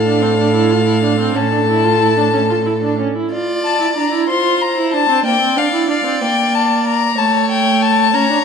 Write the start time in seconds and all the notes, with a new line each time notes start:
Already playing: A2 A4 F5
0.06 D4
0.22 C4
0.39 D4
0.54 E4
0.71 F4
0.87 E4
1.03 D4
1.20 C4
1.35 A2 C#4 A4 A5
1.52 D4
1.68 E4
1.84 F4
2.00 E4
2.17 D4
2.33 C#4
2.49 F4
2.66 E4
2.82 D4
2.99 C#4
3.16 E4
3.32 F4 D5
3.64 A5
3.80 E4
3.96 D4 A#5
4.13 E4
4.28 F4 C5 C6
4.61 A#5
4.77 E4
4.93 D4 A5
5.09 C4
5.25 A#3 D5 G5
5.41 C4
5.57 D4 F5
5.73 E4
5.88 D4 F5
6.04 C4
6.21 A#3 G5
6.55 A5
6.87 A#5
7.17 A3 C#5 A5
7.51 G5
7.82 A5
8.14 C#4 C#5 A#5
8.30 D4